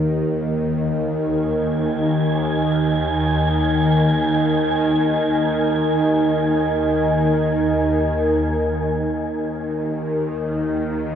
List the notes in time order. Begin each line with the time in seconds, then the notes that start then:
Already playing: D#2 D#3 D#4 A#4 D#5
1.05 G#5
8.44 D#2 D#3